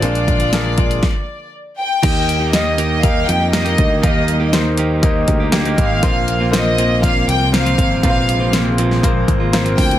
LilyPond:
<<
  \new Staff \with { instrumentName = "Violin section" } { \time 4/4 \key ees \major \tempo 4 = 120 d''2. r8 g''8~ | g''4 ees''4 f''8 g''8 ees''4 | ees''4 r2 r8 f''8~ | f''4 ees''4 f''8 g''8 f''4 |
f''4 r2 r8 g''8 | }
  \new Staff \with { instrumentName = "Grand piano" } { \time 4/4 \key ees \major <d' f' aes' bes'>4 <d' f' aes' bes'>4 r2 | <bes ees' g' bes' ees''>4 <bes ees' g' bes' ees''>4 <bes ees' g' bes' ees''>4 <bes ees' g' bes' ees''>4 | <bes ees' g' bes' f''>4 <bes ees' g' bes' c''>4 <bes ees' g' bes' ees''>4 <bes ees' g' bes' ees''>4 | <bes c' f' bes' c''>4 <bes c' f' bes' c''>4 <bes c' f' bes' d''>4 <bes c' f' bes' c''>4 |
<bes c' f' bes' ces'' c''>4 <bes c' f' bes' c''>4 <bes c' f' bes' c''>4 <bes c' f' bes' c''>4 | }
  \new Staff \with { instrumentName = "Grand piano" } { \clef bass \time 4/4 \key ees \major bes,4. r2 r8 | ees4. r2 r8 | ees4. r2 r8 | bes,4. r2 r8 |
bes,4. r2 r8 | }
  \new Staff \with { instrumentName = "Clean electric guitar" } { \time 4/4 \key ees \major <f aes d' f'>8. <aes d' f'>8. <f aes d' f'>8 r2 | <ees bes ees' g'>8. <ees bes ees' g'>8. <ees bes ees' g'>8 <ees bes ees' g'>8. <bes ees' g'>8 <ees bes ees' g'>8. | <ees bes ees' g'>8. <ees bes ees' g'>8. <ees bes ees' g'>8 <bes ees' g'>8. <bes ees' g'>8 <ees bes ees' g'>8. | <bes, f bes c' f'>8. <bes, f bes c' f'>8. <bes, f bes c' f'>8 <f bes c' f'>8. <bes c' f'>8 <bes, f bes c' f'>8. |
<bes, f bes c' f'>8. <bes, f bes c' f'>8. <bes, f bes c' f'>8 <f bes c' f'>8. <bes c' f'>8 <bes, f bes c' f'>8. | }
  \new Staff \with { instrumentName = "String section" } { \clef bass \time 4/4 \key ees \major << { <d f f'>2 r2 | bes1~ | bes1 | bes1 |
aes1 | } \\ { <aes bes>2 r2 | <g ees'>1~ | <g ees'>1 | <c f>1~ |
<c f>1 | } >> }
  \new Staff \with { instrumentName = "Picked electric bass" } { \clef bass \time 4/4 \key ees \major bes,,2 r2 | ees,2~ ees,8 f,4 d,8 | ees,2~ ees,8 d,4 aes,,8 | bes,,2~ bes,,8 c,4 aes,,8 |
bes,,2~ bes,,8 aes,,4 d,8 | }
  \new DrumStaff \with { instrumentName = "Drums" } \drummode { \time 4/4 hh16 hh16 <hh bd>16 hh16 <hh sn>8 <hh bd>16 hh16 <bd sn>4 r4 | <cymc hh bd>8 hh8 <hh sn>8 hh8 <hh bd>8 hh8 <hh sn>16 hh16 <hh bd>8 | <hh bd>8 hh8 <hh sn>8 hh8 <hh bd>8 <hh bd>8 <hh sn>16 hh16 <hh bd>8 | <hh bd>8 hh8 <hh sn>8 hh8 <hh bd>8 hh8 <hh sn>16 hh16 <hh bd>8 |
<hh bd>8 hh8 <hh sn>8 hh16 sn16 <hh bd>8 <hh bd>8 <hh sn>16 hh16 <hho bd>16 hh16 | }
>>